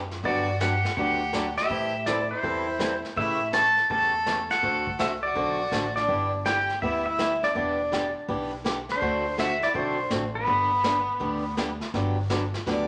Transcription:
Already playing: F#2
0.11 snare
0.23 G2 D3 F#3 B3 D4 F#4 G4 D5, brush sweep, kick
0.60 D3 F#3 B3 D4 G4 F#5, snare, hi-hat pedal
0.85 snare
0.97 D2 D3 F#3 B3 D4 G4 F#5, brush sweep, kick
1.33 D3 F#3 B3 D4 G4, snare, hi-hat pedal
1.57 G4 E5, snare
1.69 A2 E3 G3 C4 E4 A4, brush sweep, kick
2.06 E3 G3 C4 E4 A4 D5, snare, hi-hat pedal
2.31 E4 C5
2.43 E2 E3 G3 C4 E4 A4, brush sweep, kick
2.79 E3 G3 C4 E4 A4, snare, hi-hat pedal
3.05 snare
3.16 A2 C#3 E3 A3 C#4 E4 G4 E5, brush sweep, kick
3.53 C#3 E3 A3 C#4 G4 A4 A5, snare, hi-hat pedal
3.77 snare
3.90 E2 C#3 E3 A3 C#4 G4 A4 A5, brush sweep, kick
4.26 C#3 E3 A3 C#4 G4, snare, hi-hat pedal
4.50 A4 F#5, snare
4.62 D2 D3 A3 C4 F#4 A4, brush sweep, kick
4.87 kick
4.99 C2 D3 A3 C4 F#4 A4 E5, snare, hi-hat pedal
5.23 F#4 D5
5.35 B1 D3 A3 C4 F#4 A4, brush sweep, kick
5.72 A1 D3 A3 C4 F#4 A4, snare, hi-hat pedal
5.96 D4 D5, snare
6.08 G1 G3 B3 E4 G4, brush sweep, kick
6.45 G3 B3 E4 G4 G5, snare, hi-hat pedal
6.70 snare
6.82 D2 G3 B3 E4 G4 E5, brush sweep, kick
7.06 E4 E5
7.18 G3 B3 E4 G4, snare, hi-hat pedal
7.43 D4 D5, snare
7.55 E1 E3 B3 D4 G4 D5, brush sweep, kick
7.92 E3 B3 D4 G4, snare, hi-hat pedal
8.28 B1 E3 B3 D4 G4, brush sweep, kick
8.64 E3 B3 D4 G4, snare, hi-hat pedal
8.89 D4 C5, snare
9.01 D2 D3 A3 C4 F#4 A4, brush sweep, kick
9.37 D3 A3 C4 F#4 A4 E5, snare, hi-hat pedal
9.62 E4 D5, snare
9.74 B1 D3 A3 C4 D4 F#4 A4 C5, brush sweep, kick
10.10 A1 D3 A3 C4 F#4 A4, snare, hi-hat pedal
10.35 B3 B4
10.46 G1 D3 G3 B3 D4 G4, brush sweep, kick
10.83 D3 G3 B3 D4 G4, snare, hi-hat pedal
11.20 D2 D3 G3 B3 D4 G4, brush sweep, kick
11.57 D3 G3 B3 D4 G4, snare, hi-hat pedal
11.81 snare
11.94 G1 D3 F#3 B3 D4 G4, brush sweep, kick, snare
12.30 D3 F#3 B3 D4 G4, kick, snare, hi-hat pedal
12.54 snare
12.66 D2 D3 F#3 B3 D4 G4 D5, brush sweep, kick, snare

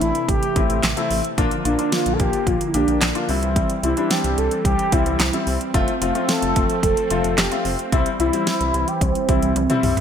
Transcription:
Already playing: C3 E3 A3 C4 E4
0.01 A1 E4, closed hi-hat
0.15 closed hi-hat
0.28 A1 G4, kick, closed hi-hat
0.43 closed hi-hat
0.56 A1 A3 C4 E4, kick, closed hi-hat
0.70 A1, closed hi-hat
0.83 A1, snare, clap, closed hi-hat
0.97 A3 C4 E4, closed hi-hat
1.11 A1, open hi-hat
1.25 closed hi-hat
1.38 A#1 D3 F3 A#3 D4 F4, kick, closed hi-hat
1.51 closed hi-hat
1.65 A#1 A#3 D4 F4, closed hi-hat
1.79 A#3 D4 F4, closed hi-hat
1.92 F4, snare, closed hi-hat
2.06 A#1, closed hi-hat
2.13 A4
2.20 A#1 G4, kick, closed hi-hat
2.33 closed hi-hat
2.47 A#1 F4, kick, closed hi-hat
2.61 closed hi-hat
2.67 E4
2.74 A#1 A#3 D4 G4, closed hi-hat
2.88 A#1, closed hi-hat
3.01 A#1, snare, clap, closed hi-hat
3.15 A#3 D4 F4, closed hi-hat
3.29 C2 E3 G3 C4 E4, open hi-hat
3.43 closed hi-hat
3.56 kick, closed hi-hat
3.70 closed hi-hat
3.83 C2 G3 C4 E4, closed hi-hat
3.97 G3 C4 D4, closed hi-hat
4.11 G4, snare, closed hi-hat
4.24 C2, closed hi-hat
4.38 C2 A4, closed hi-hat
4.51 closed hi-hat
4.65 C2 G4, kick, closed hi-hat
4.79 closed hi-hat
4.92 C2 G3 C4 E4, kick, closed hi-hat
5.06 C2, closed hi-hat
5.20 C2, snare, clap, closed hi-hat
5.33 G3 C4 E4, closed hi-hat
5.47 C2, open hi-hat
5.61 closed hi-hat
5.74 F1 F3 A3 C4 F4, kick, closed hi-hat
5.88 closed hi-hat
6.01 F1 A3 C4 F4, closed hi-hat
6.15 A3 C4 F4, closed hi-hat
6.29 A4, snare, closed hi-hat
6.42 F1, closed hi-hat
6.56 F1, kick, closed hi-hat
6.70 closed hi-hat
6.83 F1 A4, kick, closed hi-hat
6.97 closed hi-hat
7.10 F1 A3 C4 F4, closed hi-hat
7.24 F1, closed hi-hat
7.38 F1 G4, snare, clap, closed hi-hat
7.52 A3 C4 F4, closed hi-hat
7.65 F1, open hi-hat
7.79 closed hi-hat
7.92 C2 E3 G3 C4 E4, kick, closed hi-hat
8.06 closed hi-hat
8.20 C2 G3 C4 E4, closed hi-hat
8.33 G3 C4 E4, closed hi-hat
8.47 snare, closed hi-hat
8.61 C2, closed hi-hat
8.74 C2, closed hi-hat
8.88 G4, closed hi-hat
9.01 C2 C4, kick, closed hi-hat
9.15 closed hi-hat
9.29 C2 G3 C4 E4, kick, closed hi-hat
9.42 C2, closed hi-hat
9.56 C2, closed hi-hat, high tom
9.70 G3 C4 E4, closed hi-hat, mid tom
9.83 C2, mid tom, open hi-hat
9.97 closed hi-hat, floor tom

